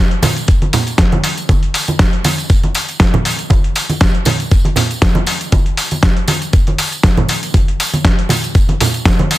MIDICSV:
0, 0, Header, 1, 2, 480
1, 0, Start_track
1, 0, Tempo, 504202
1, 1419, Time_signature, 4, 2, 24, 8
1, 8930, End_track
2, 0, Start_track
2, 0, Title_t, "Drums"
2, 107, Note_on_c, 9, 42, 37
2, 202, Note_off_c, 9, 42, 0
2, 214, Note_on_c, 9, 63, 92
2, 215, Note_on_c, 9, 54, 94
2, 215, Note_on_c, 9, 64, 86
2, 218, Note_on_c, 9, 46, 104
2, 309, Note_off_c, 9, 63, 0
2, 310, Note_off_c, 9, 54, 0
2, 310, Note_off_c, 9, 64, 0
2, 313, Note_off_c, 9, 46, 0
2, 348, Note_on_c, 9, 42, 39
2, 356, Note_on_c, 9, 54, 51
2, 443, Note_off_c, 9, 42, 0
2, 452, Note_off_c, 9, 54, 0
2, 457, Note_on_c, 9, 42, 89
2, 460, Note_on_c, 9, 36, 118
2, 470, Note_on_c, 9, 54, 35
2, 552, Note_off_c, 9, 42, 0
2, 555, Note_off_c, 9, 36, 0
2, 565, Note_off_c, 9, 54, 0
2, 588, Note_on_c, 9, 63, 63
2, 589, Note_on_c, 9, 42, 37
2, 684, Note_off_c, 9, 42, 0
2, 684, Note_off_c, 9, 63, 0
2, 695, Note_on_c, 9, 54, 81
2, 696, Note_on_c, 9, 46, 101
2, 701, Note_on_c, 9, 64, 97
2, 790, Note_off_c, 9, 54, 0
2, 791, Note_off_c, 9, 46, 0
2, 796, Note_off_c, 9, 64, 0
2, 827, Note_on_c, 9, 42, 37
2, 834, Note_on_c, 9, 54, 45
2, 922, Note_off_c, 9, 42, 0
2, 929, Note_off_c, 9, 54, 0
2, 933, Note_on_c, 9, 38, 113
2, 936, Note_on_c, 9, 42, 88
2, 939, Note_on_c, 9, 36, 103
2, 940, Note_on_c, 9, 54, 39
2, 1029, Note_off_c, 9, 38, 0
2, 1031, Note_off_c, 9, 42, 0
2, 1035, Note_off_c, 9, 36, 0
2, 1035, Note_off_c, 9, 54, 0
2, 1068, Note_on_c, 9, 42, 37
2, 1070, Note_on_c, 9, 63, 86
2, 1163, Note_off_c, 9, 42, 0
2, 1165, Note_off_c, 9, 63, 0
2, 1176, Note_on_c, 9, 46, 104
2, 1182, Note_on_c, 9, 54, 89
2, 1271, Note_off_c, 9, 46, 0
2, 1277, Note_off_c, 9, 54, 0
2, 1308, Note_on_c, 9, 54, 50
2, 1309, Note_on_c, 9, 42, 38
2, 1403, Note_off_c, 9, 54, 0
2, 1404, Note_off_c, 9, 42, 0
2, 1419, Note_on_c, 9, 36, 117
2, 1419, Note_on_c, 9, 42, 89
2, 1421, Note_on_c, 9, 63, 95
2, 1426, Note_on_c, 9, 54, 37
2, 1514, Note_off_c, 9, 36, 0
2, 1514, Note_off_c, 9, 42, 0
2, 1516, Note_off_c, 9, 63, 0
2, 1521, Note_off_c, 9, 54, 0
2, 1549, Note_on_c, 9, 42, 38
2, 1644, Note_off_c, 9, 42, 0
2, 1658, Note_on_c, 9, 46, 108
2, 1667, Note_on_c, 9, 54, 81
2, 1753, Note_off_c, 9, 46, 0
2, 1763, Note_off_c, 9, 54, 0
2, 1789, Note_on_c, 9, 42, 37
2, 1789, Note_on_c, 9, 54, 49
2, 1791, Note_on_c, 9, 63, 67
2, 1884, Note_off_c, 9, 54, 0
2, 1885, Note_off_c, 9, 42, 0
2, 1886, Note_off_c, 9, 63, 0
2, 1896, Note_on_c, 9, 38, 118
2, 1898, Note_on_c, 9, 54, 36
2, 1899, Note_on_c, 9, 36, 103
2, 1899, Note_on_c, 9, 42, 87
2, 1992, Note_off_c, 9, 38, 0
2, 1994, Note_off_c, 9, 36, 0
2, 1994, Note_off_c, 9, 42, 0
2, 1994, Note_off_c, 9, 54, 0
2, 2028, Note_on_c, 9, 42, 37
2, 2123, Note_off_c, 9, 42, 0
2, 2136, Note_on_c, 9, 54, 91
2, 2138, Note_on_c, 9, 46, 107
2, 2138, Note_on_c, 9, 63, 93
2, 2231, Note_off_c, 9, 54, 0
2, 2233, Note_off_c, 9, 46, 0
2, 2234, Note_off_c, 9, 63, 0
2, 2269, Note_on_c, 9, 42, 37
2, 2273, Note_on_c, 9, 54, 50
2, 2365, Note_off_c, 9, 42, 0
2, 2368, Note_off_c, 9, 54, 0
2, 2375, Note_on_c, 9, 54, 42
2, 2378, Note_on_c, 9, 36, 118
2, 2379, Note_on_c, 9, 42, 83
2, 2470, Note_off_c, 9, 54, 0
2, 2473, Note_off_c, 9, 36, 0
2, 2474, Note_off_c, 9, 42, 0
2, 2507, Note_on_c, 9, 63, 69
2, 2509, Note_on_c, 9, 42, 37
2, 2603, Note_off_c, 9, 63, 0
2, 2604, Note_off_c, 9, 42, 0
2, 2614, Note_on_c, 9, 54, 88
2, 2619, Note_on_c, 9, 46, 106
2, 2709, Note_off_c, 9, 54, 0
2, 2714, Note_off_c, 9, 46, 0
2, 2744, Note_on_c, 9, 54, 44
2, 2749, Note_on_c, 9, 42, 37
2, 2840, Note_off_c, 9, 54, 0
2, 2844, Note_off_c, 9, 42, 0
2, 2852, Note_on_c, 9, 54, 36
2, 2854, Note_on_c, 9, 38, 112
2, 2856, Note_on_c, 9, 42, 82
2, 2858, Note_on_c, 9, 36, 105
2, 2947, Note_off_c, 9, 54, 0
2, 2949, Note_off_c, 9, 38, 0
2, 2952, Note_off_c, 9, 42, 0
2, 2953, Note_off_c, 9, 36, 0
2, 2986, Note_on_c, 9, 42, 37
2, 2987, Note_on_c, 9, 64, 83
2, 2989, Note_on_c, 9, 63, 86
2, 3082, Note_off_c, 9, 42, 0
2, 3082, Note_off_c, 9, 64, 0
2, 3084, Note_off_c, 9, 63, 0
2, 3096, Note_on_c, 9, 46, 102
2, 3100, Note_on_c, 9, 54, 89
2, 3191, Note_off_c, 9, 46, 0
2, 3195, Note_off_c, 9, 54, 0
2, 3225, Note_on_c, 9, 42, 37
2, 3225, Note_on_c, 9, 54, 49
2, 3321, Note_off_c, 9, 42, 0
2, 3321, Note_off_c, 9, 54, 0
2, 3330, Note_on_c, 9, 63, 93
2, 3331, Note_on_c, 9, 54, 34
2, 3336, Note_on_c, 9, 42, 87
2, 3338, Note_on_c, 9, 36, 120
2, 3426, Note_off_c, 9, 54, 0
2, 3426, Note_off_c, 9, 63, 0
2, 3431, Note_off_c, 9, 42, 0
2, 3433, Note_off_c, 9, 36, 0
2, 3468, Note_on_c, 9, 42, 36
2, 3563, Note_off_c, 9, 42, 0
2, 3575, Note_on_c, 9, 54, 82
2, 3578, Note_on_c, 9, 46, 106
2, 3670, Note_off_c, 9, 54, 0
2, 3673, Note_off_c, 9, 46, 0
2, 3707, Note_on_c, 9, 54, 45
2, 3707, Note_on_c, 9, 63, 67
2, 3708, Note_on_c, 9, 42, 37
2, 3802, Note_off_c, 9, 54, 0
2, 3802, Note_off_c, 9, 63, 0
2, 3804, Note_off_c, 9, 42, 0
2, 3810, Note_on_c, 9, 54, 33
2, 3816, Note_on_c, 9, 38, 115
2, 3818, Note_on_c, 9, 36, 103
2, 3818, Note_on_c, 9, 42, 85
2, 3905, Note_off_c, 9, 54, 0
2, 3911, Note_off_c, 9, 38, 0
2, 3913, Note_off_c, 9, 36, 0
2, 3914, Note_off_c, 9, 42, 0
2, 3947, Note_on_c, 9, 42, 35
2, 4042, Note_off_c, 9, 42, 0
2, 4049, Note_on_c, 9, 54, 91
2, 4053, Note_on_c, 9, 64, 77
2, 4056, Note_on_c, 9, 46, 104
2, 4057, Note_on_c, 9, 63, 87
2, 4144, Note_off_c, 9, 54, 0
2, 4148, Note_off_c, 9, 64, 0
2, 4151, Note_off_c, 9, 46, 0
2, 4153, Note_off_c, 9, 63, 0
2, 4187, Note_on_c, 9, 54, 43
2, 4189, Note_on_c, 9, 42, 36
2, 4282, Note_off_c, 9, 54, 0
2, 4284, Note_off_c, 9, 42, 0
2, 4293, Note_on_c, 9, 54, 38
2, 4298, Note_on_c, 9, 36, 116
2, 4299, Note_on_c, 9, 42, 84
2, 4388, Note_off_c, 9, 54, 0
2, 4393, Note_off_c, 9, 36, 0
2, 4394, Note_off_c, 9, 42, 0
2, 4424, Note_on_c, 9, 63, 67
2, 4430, Note_on_c, 9, 42, 35
2, 4519, Note_off_c, 9, 63, 0
2, 4525, Note_off_c, 9, 42, 0
2, 4530, Note_on_c, 9, 64, 82
2, 4534, Note_on_c, 9, 54, 92
2, 4540, Note_on_c, 9, 46, 105
2, 4625, Note_off_c, 9, 64, 0
2, 4629, Note_off_c, 9, 54, 0
2, 4636, Note_off_c, 9, 46, 0
2, 4671, Note_on_c, 9, 42, 36
2, 4672, Note_on_c, 9, 54, 49
2, 4766, Note_off_c, 9, 42, 0
2, 4767, Note_off_c, 9, 54, 0
2, 4777, Note_on_c, 9, 38, 107
2, 4778, Note_on_c, 9, 36, 107
2, 4780, Note_on_c, 9, 42, 82
2, 4781, Note_on_c, 9, 54, 37
2, 4872, Note_off_c, 9, 38, 0
2, 4874, Note_off_c, 9, 36, 0
2, 4875, Note_off_c, 9, 42, 0
2, 4877, Note_off_c, 9, 54, 0
2, 4903, Note_on_c, 9, 63, 96
2, 4911, Note_on_c, 9, 42, 36
2, 4998, Note_off_c, 9, 63, 0
2, 5006, Note_off_c, 9, 42, 0
2, 5012, Note_on_c, 9, 54, 77
2, 5017, Note_on_c, 9, 46, 103
2, 5107, Note_off_c, 9, 54, 0
2, 5112, Note_off_c, 9, 46, 0
2, 5148, Note_on_c, 9, 54, 43
2, 5149, Note_on_c, 9, 42, 36
2, 5243, Note_off_c, 9, 54, 0
2, 5244, Note_off_c, 9, 42, 0
2, 5255, Note_on_c, 9, 54, 34
2, 5258, Note_on_c, 9, 42, 84
2, 5259, Note_on_c, 9, 36, 116
2, 5262, Note_on_c, 9, 63, 89
2, 5350, Note_off_c, 9, 54, 0
2, 5353, Note_off_c, 9, 42, 0
2, 5354, Note_off_c, 9, 36, 0
2, 5357, Note_off_c, 9, 63, 0
2, 5387, Note_on_c, 9, 42, 37
2, 5483, Note_off_c, 9, 42, 0
2, 5497, Note_on_c, 9, 46, 104
2, 5504, Note_on_c, 9, 54, 78
2, 5592, Note_off_c, 9, 46, 0
2, 5599, Note_off_c, 9, 54, 0
2, 5626, Note_on_c, 9, 54, 49
2, 5629, Note_on_c, 9, 42, 37
2, 5631, Note_on_c, 9, 63, 59
2, 5721, Note_off_c, 9, 54, 0
2, 5724, Note_off_c, 9, 42, 0
2, 5726, Note_off_c, 9, 63, 0
2, 5737, Note_on_c, 9, 38, 111
2, 5739, Note_on_c, 9, 36, 103
2, 5740, Note_on_c, 9, 42, 88
2, 5832, Note_off_c, 9, 38, 0
2, 5834, Note_off_c, 9, 36, 0
2, 5835, Note_off_c, 9, 42, 0
2, 5870, Note_on_c, 9, 42, 36
2, 5965, Note_off_c, 9, 42, 0
2, 5974, Note_on_c, 9, 54, 82
2, 5977, Note_on_c, 9, 63, 82
2, 5979, Note_on_c, 9, 46, 105
2, 6069, Note_off_c, 9, 54, 0
2, 6072, Note_off_c, 9, 63, 0
2, 6074, Note_off_c, 9, 46, 0
2, 6109, Note_on_c, 9, 42, 36
2, 6110, Note_on_c, 9, 54, 53
2, 6204, Note_off_c, 9, 42, 0
2, 6205, Note_off_c, 9, 54, 0
2, 6214, Note_on_c, 9, 54, 36
2, 6218, Note_on_c, 9, 42, 85
2, 6220, Note_on_c, 9, 36, 115
2, 6310, Note_off_c, 9, 54, 0
2, 6313, Note_off_c, 9, 42, 0
2, 6315, Note_off_c, 9, 36, 0
2, 6349, Note_on_c, 9, 42, 36
2, 6354, Note_on_c, 9, 63, 65
2, 6445, Note_off_c, 9, 42, 0
2, 6450, Note_off_c, 9, 63, 0
2, 6459, Note_on_c, 9, 46, 102
2, 6461, Note_on_c, 9, 54, 89
2, 6554, Note_off_c, 9, 46, 0
2, 6556, Note_off_c, 9, 54, 0
2, 6591, Note_on_c, 9, 42, 36
2, 6592, Note_on_c, 9, 54, 49
2, 6686, Note_off_c, 9, 42, 0
2, 6687, Note_off_c, 9, 54, 0
2, 6697, Note_on_c, 9, 38, 103
2, 6699, Note_on_c, 9, 42, 83
2, 6700, Note_on_c, 9, 36, 102
2, 6701, Note_on_c, 9, 54, 35
2, 6792, Note_off_c, 9, 38, 0
2, 6794, Note_off_c, 9, 42, 0
2, 6795, Note_off_c, 9, 36, 0
2, 6796, Note_off_c, 9, 54, 0
2, 6829, Note_on_c, 9, 63, 90
2, 6830, Note_on_c, 9, 42, 36
2, 6830, Note_on_c, 9, 64, 75
2, 6924, Note_off_c, 9, 63, 0
2, 6925, Note_off_c, 9, 42, 0
2, 6925, Note_off_c, 9, 64, 0
2, 6936, Note_on_c, 9, 54, 81
2, 6942, Note_on_c, 9, 46, 102
2, 7031, Note_off_c, 9, 54, 0
2, 7037, Note_off_c, 9, 46, 0
2, 7070, Note_on_c, 9, 54, 44
2, 7072, Note_on_c, 9, 42, 36
2, 7165, Note_off_c, 9, 54, 0
2, 7168, Note_off_c, 9, 42, 0
2, 7175, Note_on_c, 9, 54, 39
2, 7178, Note_on_c, 9, 63, 83
2, 7180, Note_on_c, 9, 36, 110
2, 7182, Note_on_c, 9, 42, 91
2, 7270, Note_off_c, 9, 54, 0
2, 7273, Note_off_c, 9, 63, 0
2, 7275, Note_off_c, 9, 36, 0
2, 7277, Note_off_c, 9, 42, 0
2, 7314, Note_on_c, 9, 42, 39
2, 7410, Note_off_c, 9, 42, 0
2, 7425, Note_on_c, 9, 46, 100
2, 7425, Note_on_c, 9, 54, 93
2, 7520, Note_off_c, 9, 46, 0
2, 7520, Note_off_c, 9, 54, 0
2, 7553, Note_on_c, 9, 63, 65
2, 7554, Note_on_c, 9, 42, 38
2, 7555, Note_on_c, 9, 54, 45
2, 7648, Note_off_c, 9, 63, 0
2, 7650, Note_off_c, 9, 42, 0
2, 7651, Note_off_c, 9, 54, 0
2, 7660, Note_on_c, 9, 36, 99
2, 7660, Note_on_c, 9, 38, 112
2, 7660, Note_on_c, 9, 54, 34
2, 7662, Note_on_c, 9, 42, 87
2, 7755, Note_off_c, 9, 36, 0
2, 7755, Note_off_c, 9, 38, 0
2, 7755, Note_off_c, 9, 54, 0
2, 7758, Note_off_c, 9, 42, 0
2, 7794, Note_on_c, 9, 42, 37
2, 7889, Note_off_c, 9, 42, 0
2, 7893, Note_on_c, 9, 63, 86
2, 7899, Note_on_c, 9, 64, 68
2, 7903, Note_on_c, 9, 46, 100
2, 7903, Note_on_c, 9, 54, 90
2, 7988, Note_off_c, 9, 63, 0
2, 7994, Note_off_c, 9, 64, 0
2, 7998, Note_off_c, 9, 46, 0
2, 7999, Note_off_c, 9, 54, 0
2, 8033, Note_on_c, 9, 42, 38
2, 8034, Note_on_c, 9, 54, 50
2, 8129, Note_off_c, 9, 42, 0
2, 8129, Note_off_c, 9, 54, 0
2, 8136, Note_on_c, 9, 54, 37
2, 8140, Note_on_c, 9, 36, 112
2, 8141, Note_on_c, 9, 42, 87
2, 8231, Note_off_c, 9, 54, 0
2, 8235, Note_off_c, 9, 36, 0
2, 8236, Note_off_c, 9, 42, 0
2, 8269, Note_on_c, 9, 63, 65
2, 8273, Note_on_c, 9, 42, 38
2, 8364, Note_off_c, 9, 63, 0
2, 8368, Note_off_c, 9, 42, 0
2, 8382, Note_on_c, 9, 46, 99
2, 8385, Note_on_c, 9, 54, 83
2, 8386, Note_on_c, 9, 64, 87
2, 8477, Note_off_c, 9, 46, 0
2, 8480, Note_off_c, 9, 54, 0
2, 8481, Note_off_c, 9, 64, 0
2, 8510, Note_on_c, 9, 54, 49
2, 8514, Note_on_c, 9, 42, 37
2, 8605, Note_off_c, 9, 54, 0
2, 8609, Note_off_c, 9, 42, 0
2, 8620, Note_on_c, 9, 36, 101
2, 8620, Note_on_c, 9, 38, 107
2, 8620, Note_on_c, 9, 54, 35
2, 8623, Note_on_c, 9, 42, 86
2, 8715, Note_off_c, 9, 36, 0
2, 8715, Note_off_c, 9, 38, 0
2, 8715, Note_off_c, 9, 54, 0
2, 8718, Note_off_c, 9, 42, 0
2, 8751, Note_on_c, 9, 63, 83
2, 8754, Note_on_c, 9, 42, 37
2, 8846, Note_off_c, 9, 63, 0
2, 8849, Note_off_c, 9, 42, 0
2, 8861, Note_on_c, 9, 46, 98
2, 8861, Note_on_c, 9, 54, 80
2, 8930, Note_off_c, 9, 46, 0
2, 8930, Note_off_c, 9, 54, 0
2, 8930, End_track
0, 0, End_of_file